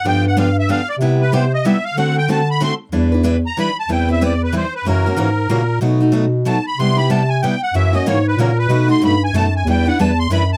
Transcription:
X:1
M:3/4
L:1/8
Q:"Swing" 1/4=187
K:Dmix
V:1 name="Accordion"
g f =f e f d | z B c _e =e =f | f g a b c' z | [K:Em] z3 ^a b =a |
g e d B c B | ^A6 | z4 a b | c' b a ^g =g f |
e ^d ^c B ^A B- | B c' b ^g a g | g f a c' b a |]
V:2 name="Steel-string acoustic guitar"
[D,=F,B,DG] z [D,F,B,DG] z [D,F,B,DG] z | [C,G,B,EG] z [C,G,B,EG] z [C,G,B,EG] z | [D,A,CFA] z [D,A,CFA] z [D,A,CFA] z | [K:Em] [E,G,DEB] [DEB] [E,G,DEB] z [E,G,DEB] z |
[E,G,CEB] [CEB] [E,G,CEB] z [E,G,CEB] z | [^C,E,^A,^CF] [A,CF] [C,E,A,CF] z [C,E,A,CF] z | [B,,F,A,^DF] [A,DF] [B,,F,A,DF] z [B,,F,A,DF] z | [C,G,B,EG] [B,EG] [C,G,B,EG] z [C,G,B,EG] z |
[^C,E,^A,^CF] [A,CF] [C,E,A,CF] z [C,E,A,CF] z | [B,,F,A,^DF] [A,DF] [B,,F,A,DF] z [B,,F,A,DF] z | [E,G,DEB] [DEB] [E,G,DEB] z [E,G,DEB] z |]
V:3 name="Bass clarinet" clef=bass
G,,6 | C,6 | D,6 | [K:Em] E,,4 z2 |
E,,6 | F,,2 ^G,,2 ^A,,2 | B,,6 | C,6 |
F,,2 ^G,,2 ^A,,2 | B,,2 G,,2 F,,2 | E,,2 E,,2 F,,2 |]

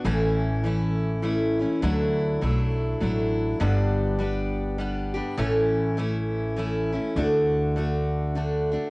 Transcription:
X:1
M:3/4
L:1/8
Q:"Swing" 1/4=101
K:D
V:1 name="Steel-string acoustic guitar"
[A,,E,A,CE]2 [E,A,CE]2 [E,A,CE] [A,CE] | [D,F,A,DE]2 [F,A,DE]2 [F,A,DE]2 | [G,,D,G,B,DG]2 [G,B,DG]2 [G,B,DG] [G,B,DG] | [A,,E,A,CE]2 [E,A,CE]2 [E,A,CE] [A,CE] |
[D,A,DF]2 [D,A,DF]2 [D,A,DF] [A,DF] |]
V:2 name="Upright bass" clef=bass
A,,,6 | D,,2 B,,,2 A,,,2 | G,,,6 | A,,,6 |
D,,6 |]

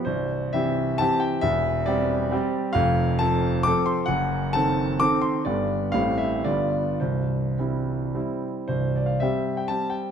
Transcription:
X:1
M:3/4
L:1/16
Q:1/4=130
K:C
V:1 name="Grand piano"
c4 e4 a2 g2 | e4 d6 z2 | f4 a4 d'2 c'2 | ^f4 a4 d'2 c'2 |
d4 f2 e2 d4 | c8- c2 z2 | c2 d f e3 g a2 g2 |]
V:2 name="Grand piano" clef=bass
[C,,,C,,]4 [E,CG]4 [E,CG]4 | [E,,,E,,]4 [G,CG]4 [G,CG]4 | [F,,,F,,]4 [F,CA]4 [F,CA]4 | [^F,,,^F,,]4 [^D,CA]4 [D,CA]4 |
[G,,,G,,D,B,G]4 [A,,,A,,G,CE]4 [G,,,G,,G,B,F]4 | [C,,,C,,]4 [G,CE]4 [G,CE]4 | [C,,,C,,]4 [G,CG]4 [G,CG]4 |]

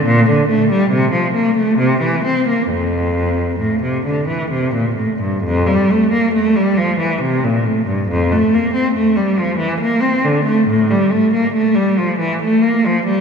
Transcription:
X:1
M:3/4
L:1/16
Q:1/4=69
K:F
V:1 name="Cello" clef=bass
B,, D, A, G, C, F, B, A, C, E, C B, | F,,4 A,, C, D, E, C, B,, A,, G,, | F,, G, A, B, A, G, F, E, C, B,, A,, G,, | F,, A, B, C A, G, F, E, B, C D, A, |
A,, G, A, B, A, G, F, E, A, B, F, G, |]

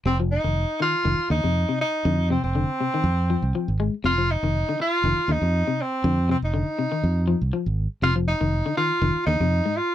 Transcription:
X:1
M:4/4
L:1/16
Q:"Swing 16ths" 1/4=121
K:Fdor
V:1 name="Tenor saxophone"
C2 E4 F4 E4 E2- | E2 C C8- C3 z2 | F2 E4 F4 E4 C2- | C2 C E8 z4 z |
F2 E4 F4 E4 F2 |]
V:2 name="Clean electric guitar" clef=bass
C, F,2 E,2 z E,2 E,2 D, C,2 C,2 z | D,2 C,2 D,2 C, E,2 z F,2 F,2 A,2 | C, F,2 E,2 D, z2 E,2 D, z2 C,2 z | D,2 C,2 D,2 C, E,2 z F,2 F,2 z2 |
C, F,2 E,2 D, E,2 E,2 D, C,2 A,,2 z |]
V:3 name="Fingered electric bass" clef=bass
F,,,3 F,,,2 z3 F,,, z E,, F,,2 z3 | F,,3 F,,,2 z3 F,,3 C,, z A,,,2 z | F,,,3 F,,,2 z3 F,,, z E,, F,,2 z3 | F,,3 F,,,2 z3 F,,3 C,, z A,,,2 z |
F,,,3 F,,,2 z3 F,,, z E,, F,,2 z3 |]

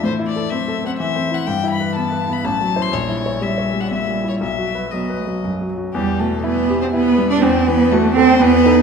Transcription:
X:1
M:3/4
L:1/16
Q:1/4=123
K:Em
V:1 name="Violin"
c2 d2 e3 f e3 f | g2 b2 a3 b a3 c' | ^c4 e3 f e3 c | e4 ^d4 z4 |
G2 A2 B3 c B3 d | c2 B2 A2 c2 B4 |]
V:2 name="Grand piano"
(3A,,2 E2 A2 (3C2 A2 C2 (3E,2 C2 E2 | (3G,,2 E2 B2 (3B,2 B2 B,2 (3A,,,2 F,2 [Ec]2 | (3^A,,,2 E2 ^c2 (3G,2 c2 G,2 (3^A,,2 G,2 E2 | (3B,,,2 F2 B2 (3F,2 B2 F,2 (3F,,2 F,2 F2 |
E,,2 B,,2 E2 G2 E2 G,2 | E,,2 E,2 F2 A2 E,,2 [^DA]2 |]
V:3 name="Cello"
E,4 F,4 E,4 | E,8 F,4 | G,4 G,8 | F,4 B,2 A,2 G,2 F,2 |
G,2 A,2 B,3 C B,3 D | C2 B,2 A,2 C2 B,4 |]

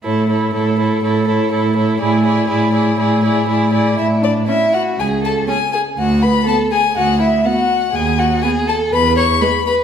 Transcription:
X:1
M:4/4
L:1/8
Q:1/4=122
K:A
V:1 name="Violin"
c c c c c c c c | d d d d d d d d | e d e f g a g g | f b a g f e f2 |
g f g a b c' b b |]
V:2 name="Violin"
A A A A A A A A | G G G G G G G G | E D E F G A G G | F B A G F E F2 |
G F G A B c B B |]
V:3 name="Viola"
E E E E E E E E | E E E E E E E E | z2 C2 z2 C2 | z2 B,2 z2 B,2 |
z2 B,2 z2 G,2 |]
V:4 name="Cello" clef=bass
A,,2 A,,2 A,,2 A,,2 | A,,2 A,,2 A,,2 A,,2 | A,,2 z2 C,,2 z2 | D,,2 z2 D,,2 z2 |
^D,,2 z2 E,,2 z2 |]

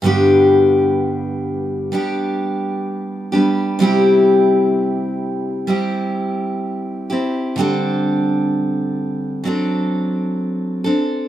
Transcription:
X:1
M:4/4
L:1/8
Q:1/4=64
K:G
V:1 name="Steel-string acoustic guitar"
[G,,D,G,B,DG]4 [G,B,DG]3 [G,B,DG] | [C,G,CEG]4 [G,CEG]3 [CEG] | [D,G,CDA]4 [F,CDA]3 [CDA] |]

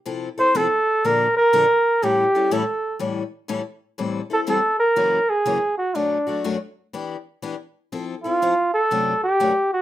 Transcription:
X:1
M:4/4
L:1/8
Q:"Swing" 1/4=122
K:Aphr
V:1 name="Flugelhorn"
z c A2 B B3 | G2 A2 z4 | [K:Ephr] z A A _B2 ^G2 ^F | D2 z6 |
z F2 A2 G2 ^F |]
V:2 name="Steel-string acoustic guitar"
[C,F,CEA] [CEA] [C,F,CEA] z [B,,D,F,B,DA] z [B,,D,F,B,DA] z | [A,,E,G,^CEA] [G,CEA] [A,,E,G,CEA] z [A,,E,G,CEA] z [A,,E,G,CEA] z | [K:Ephr] [A,,E,G,CEA] [G,CEA] [A,,E,G,CEA] z [^F,,^C,E,^A,^C^F] z [F,,C,E,A,CF] z | [^F,,B,,^F,A,D^F] [F,A,DF] [F,,B,,F,A,DF] z [E,B,DG] z [E,B,DG] z |
[F,CEA] [CEA] [F,CEA] z [^F,,C,^F,A,D^F] z [F,,C,F,A,DF] z |]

